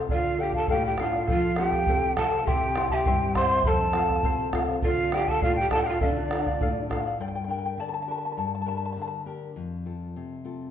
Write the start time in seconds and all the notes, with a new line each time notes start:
Already playing: C5
0.09 D3 F4 A4 D5 F5, bombo low
0.38 D4 G4 A4 D5 F5 G5
0.42 F4 A4
0.53 D5 F5 A5, bombo low
0.58 A4
0.68 A4 D5 F5 G5, bombo low
0.72 A2 G4
0.86 G4 G5
0.98 D4 F4 A4 D5 F5, bombo rim, bombo low
1.02 F4
1.12 D5 F5
1.27 F3 F4 A4 C5 F5, bombo low
1.56 C4 F4 G4 A4 C5 F5 G5, bombo rim
1.72 C5 F5, bombo low
1.87 C3 A4 C5 F5, bombo low
2.17 C4 F4 A4 C5 F5 A5, bombo rim, bombo low
2.32 C5 F5
2.47 C3 E4 G4 C5 E5 G5 C6, bombo low
2.76 C4 E4 G4 C5 E5 C6, bombo rim
2.90 E4 G4 E5 A5 C6, bombo low
2.95 G5
3.06 G2 E4 G4 C5 E5 C6, bombo low
3.35 C4 E4 G4 C5 E5 C6, bombo rim, bombo low
3.52 E4 E5 C6
3.64 F2 A4 C5 F5 A5 C6, bombo low
3.93 C4 F4 A4 C5 F5, bombo rim
4.09 C5 F5, bombo low
4.23 C3 A4 C5 F5, bombo low
4.52 C4 F4 A4 C5 F5, bombo rim, bombo low
4.68 C5 F5
4.82 D3 F4 A4 D5 F5, bombo low
5.12 D4 F4 G4 A4 D5 F5 G5, bombo rim
5.28 A4 D5 F5 A5, bombo low
5.41 A2 F4 A4 D5 F5, bombo low
5.56 G5
5.61 G4
5.70 D4 F4 A4 D5 F5 A5, bombo rim, bombo low
5.75 A4
5.82 G4 F5 G5
5.87 F4 D5 F5
6.01 D3 D4 A4 D5 E5 F5, bombo low
6.05 D5
6.31 D4 F4 A4 D5 F5, bombo rim
6.46 D5 F5, bombo low
6.61 A2 A4 D5 F5, bombo low
6.89 D4 F4 A4 D5 F5, bombo rim, bombo low
7.06 D5 F5
7.19 G2 D5 G5
7.28 G5
7.35 G5
7.44 D4 G5
7.49 G4 A#4 G5
7.59 G5
7.66 G5
7.77 D3 D5 A5
7.89 A5
7.94 A5
8.02 A5
8.07 D4 G4 A#4 A5
8.18 A5
8.25 A5
8.32 A5
8.37 G2 A5
8.47 A5
8.55 A5
8.61 D4 A5
8.66 G4 A#4 A5
8.77 A5
8.85 A5
8.93 D3 A5
9.02 A5
9.08 A5
9.26 D4 G4 A#4
9.56 F2
9.85 C4 F4 A4
10.16 C3
10.44 C4 F4 A4